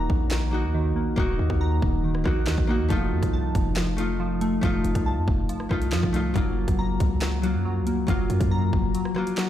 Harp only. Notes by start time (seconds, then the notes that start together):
Already playing: A#3 D#4 F#4
0.51 A#3 D#4 F#4
1.16 A#3 D#4 F#4
2.24 A#3 D#4 F#4
2.67 A#3 D#4 F#4
2.88 A3 D#4 F4
3.97 A3 D#4 F4
4.61 A3 D#4 F4
5.69 A3 D#4 F4
6.13 A3 D#4 F4
6.34 F#3 A#3 F4
7.42 F#3 A#3 F4
8.07 F#3 A#3 F4
9.15 F#3 A#3 F4